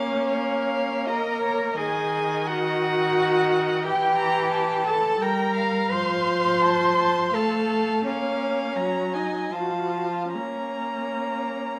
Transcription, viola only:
0.00 1.74 A#3 medium
1.79 3.86 D#3 medium
3.85 5.19 E3 medium
5.20 5.93 G3 medium
5.92 7.34 F3 medium
7.34 8.08 A3 medium
8.07 8.78 A#3 medium
8.79 9.52 F#3 medium
9.53 10.36 F3 medium
10.35 11.79 A#3 medium

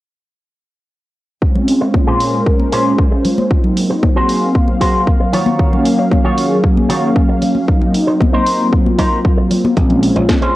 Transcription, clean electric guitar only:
1.81 muted clean electric guitar stroke loud
1.94 muted clean electric guitar stroke soft
2.07 2.40 A#2 medium
2.07 2.40 C#4 medium
2.07 2.40 G#4 medium
2.07 2.40 C5 medium
2.72 2.92 A#2 loud
2.72 2.92 C#4 medium
2.72 2.92 G#4 medium
2.72 2.92 C5 medium
3.11 muted clean electric guitar stroke medium
3.24 muted clean electric guitar stroke soft
3.90 muted clean electric guitar stroke loud
4.03 muted clean electric guitar stroke soft
4.16 4.49 F#4 medium
4.16 4.49 G#4 medium
4.16 4.49 C5 medium
4.81 5.01 F#4 loud
4.81 5.01 G#4 medium
4.81 5.01 C5 loud
5.20 muted clean electric guitar stroke medium
5.33 5.85 D#3 medium
5.33 5.86 F4 medium
5.33 5.86 F#4 medium
5.33 5.86 C#5 medium
5.98 muted clean electric guitar stroke loud
6.11 muted clean electric guitar stroke soft
6.24 6.57 D#3 medium
6.24 6.57 F4 medium
6.24 6.57 F#4 medium
6.24 6.58 C#5 medium
6.89 7.09 D#3 medium
6.89 7.09 F4 medium
6.89 7.10 F#4 medium
6.89 7.10 C#5 medium
7.29 muted clean electric guitar stroke medium
7.42 muted clean electric guitar stroke soft
8.07 muted clean electric guitar stroke loud
8.20 muted clean electric guitar stroke soft
8.33 8.66 D#4 medium
8.33 8.66 A#4 medium
8.33 8.66 C5 medium
8.98 9.18 D#4 loud
8.98 9.18 A#4 loud
8.98 9.18 C5 loud
9.37 muted clean electric guitar stroke medium
9.50 muted clean electric guitar stroke soft
10.16 muted clean electric guitar stroke loud
10.29 muted clean electric guitar stroke soft
10.41 10.56 C#4 medium
10.41 10.56 G#4 medium
10.41 10.56 C5 medium

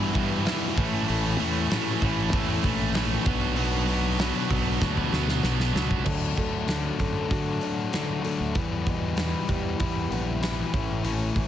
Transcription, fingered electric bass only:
0.00 0.10 G2 loud
0.15 0.41 G2 medium
0.77 0.91 A1 loud
1.10 1.35 A1 loud
1.41 1.66 E2 loud
2.02 2.28 A1 loud
2.34 2.60 E2 loud
2.65 3.17 A#1 medium
3.27 4.31 B1 loud
4.51 4.77 B1 medium
4.82 5.08 D2 loud
5.12 5.39 D2 medium
5.43 5.72 B1 medium
5.75 6.03 C#2 medium
6.07 6.33 D2 medium
6.38 6.90 D2 medium
7.00 7.26 F#2 medium
7.31 7.57 D3 medium
8.40 8.53 D2 medium
8.56 9.34 E2 medium
9.49 9.75 E2 medium
9.81 10.06 E2 medium
10.11 10.63 A#1 medium
10.74 11.00 A1 medium
11.04 11.30 A1 loud
11.37 11.48 A1 medium

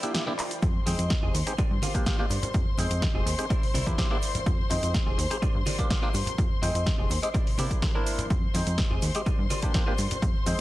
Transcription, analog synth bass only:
0.62 0.79 F2 loud
0.86 0.95 F2 loud
0.98 1.15 F2 medium
1.23 1.30 F1 medium
1.34 1.43 D#2 loud
1.58 1.68 G2 soft
1.71 1.79 G2 medium
2.30 2.39 G2 medium
2.54 2.66 F2 loud
2.67 2.76 F2 soft
2.78 2.86 F2 loud
2.91 3.07 F2 medium
3.14 3.22 F1 medium
3.26 3.34 D#2 loud
3.62 3.72 C2 soft
3.74 3.83 C2 medium
3.87 3.94 E2 medium
4.46 4.63 F2 loud
4.70 4.79 F2 loud
4.83 4.99 F2 medium
5.07 5.15 F1 medium
5.18 5.26 D#2 loud
5.42 5.52 G2 soft
5.55 5.63 G2 medium
6.14 6.23 G2 medium
6.38 6.50 F2 loud
6.62 6.71 F2 loud
6.75 6.91 F2 medium
6.99 7.07 F1 medium
7.10 7.19 D#2 loud
7.47 7.56 C3 soft
7.58 7.67 C3 medium
8.30 8.47 F2 loud
8.54 8.63 F2 loud
8.67 8.83 F2 medium
8.91 8.99 F1 medium
9.02 9.11 D#2 loud
9.26 9.36 G2 soft
9.39 9.46 G2 medium
9.99 10.07 G2 loud
10.22 10.34 F2 loud
10.35 10.44 F2 soft
10.46 10.55 F2 loud

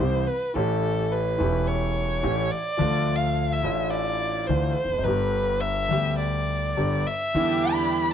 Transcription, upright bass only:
0.00 0.23 C2 medium
0.56 1.36 A1 medium
1.41 2.20 E1 medium
2.24 2.47 A1 medium
2.80 3.60 D2 loud
3.64 4.45 A1 medium
4.49 4.73 D2 medium
4.85 4.90 E1 soft
4.91 4.99 F1 medium
4.99 5.04 F#1 medium
5.05 5.87 G1 medium
5.91 6.73 D2 medium
6.78 7.02 G1 medium
7.35 8.14 E2 medium

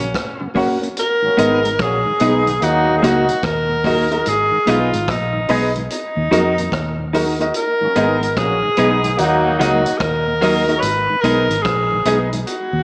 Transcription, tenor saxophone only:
0.00 0.53 C#4 medium
0.99 1.83 A#4 loud
1.82 2.65 G#4 loud
2.63 2.97 F#4 loud
2.98 3.06 G#4 medium
3.05 3.46 F#4 medium
3.44 4.30 A#4 loud
4.29 4.71 G#4 loud
4.69 5.12 F4 medium
5.10 5.68 D#4 medium
5.92 7.10 D#4 medium
7.56 8.39 A#4 loud
8.38 9.20 G#4 loud
9.19 9.58 F#4 medium
9.59 9.99 F#4 medium
9.98 10.79 A#4 loud
10.78 11.23 B4 loud
10.78 10.81 C#5 medium
11.21 11.64 A#4 loud
11.62 12.23 G#4 loud
12.47 12.83 F#4 medium

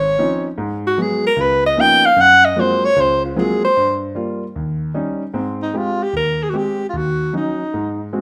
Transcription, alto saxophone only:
0.00 0.47 C#5 medium
0.87 1.04 F#4 medium
1.02 1.26 G#4 medium
1.27 1.43 A#4 loud
1.41 1.65 B4 medium
1.66 1.82 D#5 loud
1.81 2.07 G5 loud
2.06 2.22 F5 loud
2.21 2.47 F#5 loud
2.45 2.62 D#5 medium
2.60 2.86 C5 medium
2.85 3.02 C#5 loud
3.00 3.24 C5 medium
3.25 3.41 F4 soft
3.39 3.63 G#4 medium
3.65 4.00 C5 loud
5.63 5.79 D#4 medium
5.78 6.05 F4 medium
6.03 6.15 G4 medium
6.16 6.45 A#4 loud
6.43 6.51 G#4 medium
6.50 6.58 F#4 medium
6.57 6.89 G4 medium
6.89 6.99 F4 medium
6.97 7.35 F#4 medium
7.37 8.10 D#4 medium

